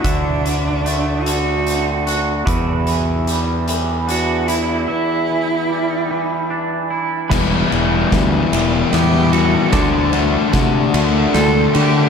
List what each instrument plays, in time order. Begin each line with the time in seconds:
Already playing: clean electric guitar A3 C4 F#4, pedal steel guitar F#4 C5 A5
0.02 fingered electric bass D2, clean electric guitar D3, cello D4, pedal steel guitar E5, kick, closed hi-hat
0.45 clean electric guitar D3, closed hi-hat
0.85 clean electric guitar A3, closed hi-hat
1.22 clean electric guitar D3, cello F#4
1.26 closed hi-hat
1.66 clean electric guitar C4, closed hi-hat
2.07 clean electric guitar F#4, closed hi-hat
2.46 fingered electric bass E2, clean electric guitar E2, pedal steel guitar E4 B4 D5, kick, closed hi-hat
2.87 clean electric guitar E3, closed hi-hat
3.27 clean electric guitar G3, closed hi-hat
3.68 clean electric guitar E3, closed hi-hat
4.08 clean electric guitar D4, cello F#4, closed hi-hat
4.48 cello E4, clean electric guitar E4, closed hi-hat
4.88 clean electric guitar E2, cello E4, pedal steel guitar E5
5.30 clean electric guitar E3
5.70 clean electric guitar G3
6.10 clean electric guitar E3
6.50 clean electric guitar D4
6.90 clean electric guitar E4
7.29 fingered electric bass E1, clean electric guitar E2, distorted electric guitar E3 G3 B3 E4, pedal steel guitar G3 B4 E5 B5, kick, snare, crash
7.71 fingered electric bass E1, distorted electric guitar E3 G3 B3 E4, clean electric guitar G3, ride
8.11 fingered electric bass D2, distorted electric guitar E3 G3 B3 E4, clean electric guitar E3, kick, snare, ride
8.51 fingered electric bass E1, distorted electric guitar E3 G3 B3 E4, clean electric guitar G3, ride
8.92 fingered electric bass E2, distorted electric guitar E3 G3 B3 E4, clean electric guitar B3, cello G4, snare, ride
9.32 distorted electric guitar E3 G3 B3 E4, clean electric guitar E3, cello F#4, ride
9.72 fingered electric bass D2, distorted electric guitar D3 A3 D4 F#4, clean electric guitar D3, pedal steel guitar C5 D5 A5, kick, snare, ride
10.12 distorted electric guitar D3 A3 D4 F#4, clean electric guitar A3, ride
10.53 fingered electric bass C3, distorted electric guitar D3 A3 D4 F#4, clean electric guitar D3, kick, snare, ride
10.94 fingered electric bass D2, distorted electric guitar D3 A3 D4 F#4, clean electric guitar A3, ride
11.33 fingered electric bass D2, distorted electric guitar D3 A3 D4 F#4, clean electric guitar C4, cello A4, snare, ride
11.73 clean electric guitar D3, distorted electric guitar D3 A3 D4 F#4, fingered electric bass D3, cello G4, ride